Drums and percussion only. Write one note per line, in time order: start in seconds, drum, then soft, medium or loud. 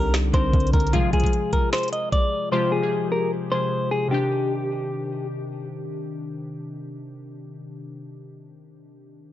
0.14 finger snap medium
0.14 snare loud
0.14 closed hi-hat medium
0.34 kick loud
0.34 closed hi-hat medium
0.53 kick loud
0.53 closed hi-hat soft
0.60 closed hi-hat soft
0.67 closed hi-hat soft
0.73 kick medium
0.73 closed hi-hat medium
0.80 closed hi-hat medium
0.87 closed hi-hat medium
0.93 kick loud
0.93 closed hi-hat medium
1.13 kick loud
1.13 closed hi-hat medium
1.20 kick loud
1.20 closed hi-hat medium
1.26 closed hi-hat medium
1.33 closed hi-hat medium
1.53 kick loud
1.53 closed hi-hat medium
1.73 finger snap medium
1.73 snare loud
1.73 closed hi-hat medium
1.78 closed hi-hat medium
1.83 closed hi-hat medium
1.88 closed hi-hat medium
1.93 closed hi-hat medium
2.12 kick loud
2.12 closed hi-hat medium